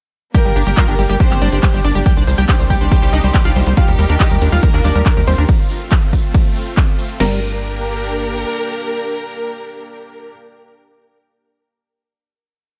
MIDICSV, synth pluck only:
0, 0, Header, 1, 2, 480
1, 0, Start_track
1, 0, Key_signature, -2, "minor"
1, 0, Tempo, 428571
1, 386, Time_signature, 4, 2, 24, 8
1, 14335, End_track
2, 0, Start_track
2, 0, Title_t, "Synth pluck"
2, 0, Program_c, 0, 84
2, 386, Note_on_c, 0, 79, 98
2, 387, Note_on_c, 0, 67, 77
2, 482, Note_off_c, 0, 67, 0
2, 482, Note_off_c, 0, 79, 0
2, 506, Note_on_c, 0, 67, 61
2, 602, Note_off_c, 0, 67, 0
2, 627, Note_on_c, 0, 67, 69
2, 722, Note_off_c, 0, 67, 0
2, 747, Note_on_c, 0, 67, 65
2, 842, Note_off_c, 0, 67, 0
2, 866, Note_on_c, 0, 77, 99
2, 867, Note_on_c, 0, 65, 76
2, 962, Note_off_c, 0, 65, 0
2, 962, Note_off_c, 0, 77, 0
2, 988, Note_on_c, 0, 67, 62
2, 1083, Note_off_c, 0, 67, 0
2, 1107, Note_on_c, 0, 67, 64
2, 1203, Note_off_c, 0, 67, 0
2, 1227, Note_on_c, 0, 67, 78
2, 1227, Note_on_c, 0, 79, 96
2, 1322, Note_off_c, 0, 67, 0
2, 1322, Note_off_c, 0, 79, 0
2, 1346, Note_on_c, 0, 67, 67
2, 1442, Note_off_c, 0, 67, 0
2, 1466, Note_on_c, 0, 67, 65
2, 1562, Note_off_c, 0, 67, 0
2, 1588, Note_on_c, 0, 62, 78
2, 1588, Note_on_c, 0, 74, 96
2, 1683, Note_off_c, 0, 62, 0
2, 1683, Note_off_c, 0, 74, 0
2, 1708, Note_on_c, 0, 67, 65
2, 1803, Note_off_c, 0, 67, 0
2, 1827, Note_on_c, 0, 67, 67
2, 1923, Note_off_c, 0, 67, 0
2, 1947, Note_on_c, 0, 67, 60
2, 2042, Note_off_c, 0, 67, 0
2, 2066, Note_on_c, 0, 62, 76
2, 2066, Note_on_c, 0, 74, 88
2, 2162, Note_off_c, 0, 62, 0
2, 2162, Note_off_c, 0, 74, 0
2, 2186, Note_on_c, 0, 67, 66
2, 2282, Note_off_c, 0, 67, 0
2, 2306, Note_on_c, 0, 67, 78
2, 2306, Note_on_c, 0, 79, 94
2, 2402, Note_off_c, 0, 67, 0
2, 2402, Note_off_c, 0, 79, 0
2, 2427, Note_on_c, 0, 72, 64
2, 2523, Note_off_c, 0, 72, 0
2, 2547, Note_on_c, 0, 72, 64
2, 2643, Note_off_c, 0, 72, 0
2, 2666, Note_on_c, 0, 67, 74
2, 2666, Note_on_c, 0, 79, 92
2, 2762, Note_off_c, 0, 67, 0
2, 2762, Note_off_c, 0, 79, 0
2, 2787, Note_on_c, 0, 72, 66
2, 2882, Note_off_c, 0, 72, 0
2, 2906, Note_on_c, 0, 72, 64
2, 3002, Note_off_c, 0, 72, 0
2, 3027, Note_on_c, 0, 67, 76
2, 3027, Note_on_c, 0, 79, 97
2, 3122, Note_off_c, 0, 67, 0
2, 3122, Note_off_c, 0, 79, 0
2, 3147, Note_on_c, 0, 72, 67
2, 3243, Note_off_c, 0, 72, 0
2, 3265, Note_on_c, 0, 72, 67
2, 3362, Note_off_c, 0, 72, 0
2, 3386, Note_on_c, 0, 72, 69
2, 3482, Note_off_c, 0, 72, 0
2, 3505, Note_on_c, 0, 63, 76
2, 3506, Note_on_c, 0, 75, 95
2, 3601, Note_off_c, 0, 63, 0
2, 3602, Note_off_c, 0, 75, 0
2, 3627, Note_on_c, 0, 72, 62
2, 3722, Note_off_c, 0, 72, 0
2, 3746, Note_on_c, 0, 72, 65
2, 3842, Note_off_c, 0, 72, 0
2, 3866, Note_on_c, 0, 65, 77
2, 3866, Note_on_c, 0, 77, 91
2, 3962, Note_off_c, 0, 65, 0
2, 3962, Note_off_c, 0, 77, 0
2, 3986, Note_on_c, 0, 72, 64
2, 4082, Note_off_c, 0, 72, 0
2, 4105, Note_on_c, 0, 72, 64
2, 4201, Note_off_c, 0, 72, 0
2, 4226, Note_on_c, 0, 65, 78
2, 4226, Note_on_c, 0, 77, 97
2, 4322, Note_off_c, 0, 65, 0
2, 4322, Note_off_c, 0, 77, 0
2, 4347, Note_on_c, 0, 70, 65
2, 4442, Note_off_c, 0, 70, 0
2, 4466, Note_on_c, 0, 70, 65
2, 4562, Note_off_c, 0, 70, 0
2, 4588, Note_on_c, 0, 70, 66
2, 4683, Note_off_c, 0, 70, 0
2, 4708, Note_on_c, 0, 63, 76
2, 4709, Note_on_c, 0, 75, 94
2, 4803, Note_off_c, 0, 63, 0
2, 4803, Note_off_c, 0, 75, 0
2, 4829, Note_on_c, 0, 70, 63
2, 4923, Note_off_c, 0, 70, 0
2, 4947, Note_on_c, 0, 70, 64
2, 5043, Note_off_c, 0, 70, 0
2, 5067, Note_on_c, 0, 65, 78
2, 5067, Note_on_c, 0, 77, 99
2, 5163, Note_off_c, 0, 65, 0
2, 5163, Note_off_c, 0, 77, 0
2, 5188, Note_on_c, 0, 70, 66
2, 5283, Note_off_c, 0, 70, 0
2, 5309, Note_on_c, 0, 70, 64
2, 5403, Note_off_c, 0, 70, 0
2, 5428, Note_on_c, 0, 62, 76
2, 5428, Note_on_c, 0, 74, 97
2, 5523, Note_off_c, 0, 62, 0
2, 5523, Note_off_c, 0, 74, 0
2, 5549, Note_on_c, 0, 70, 64
2, 5643, Note_off_c, 0, 70, 0
2, 5668, Note_on_c, 0, 70, 66
2, 5763, Note_off_c, 0, 70, 0
2, 5790, Note_on_c, 0, 70, 61
2, 5884, Note_off_c, 0, 70, 0
2, 5908, Note_on_c, 0, 60, 79
2, 5908, Note_on_c, 0, 72, 89
2, 6003, Note_off_c, 0, 60, 0
2, 6003, Note_off_c, 0, 72, 0
2, 6028, Note_on_c, 0, 70, 65
2, 6123, Note_off_c, 0, 70, 0
2, 8067, Note_on_c, 0, 70, 94
2, 11545, Note_off_c, 0, 70, 0
2, 14335, End_track
0, 0, End_of_file